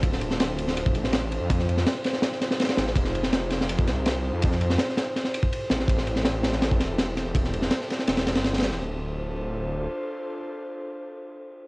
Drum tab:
RD |x---x---x---x---x---x---x---x---|x---x---x---x---x---x---xxx-x---|x---x---x---x---x---x---x-------|x---x---x---x---x---x---x---x---|
SD |--o---o-o-----o-------o-o-------|--o---o-o-o-o-o-o-o-o-o-ooo-o-o-|--o---o-o---o-o-----o---o-------|--o---o-o-o-o---o-o---------o-o-|
BD |o-----------------o-------------|o-------------------------------|o-----------------o-------------|o---------------------o---------|

RD |x---x---x---x---x---x---x---x---|x---x---x---x---x-x-x-x-x-xxx---|--------------------------------|--------------------------------|
SD |--o---o-o---o-o-o---o---o---o---|--o---o-o-o-o-o-o-o-o-o-o-ooo-o-|--------------------------------|--------------------------------|
BD |o-----------------o-------------|o-------------------------------|--------------------------------|--------------------------------|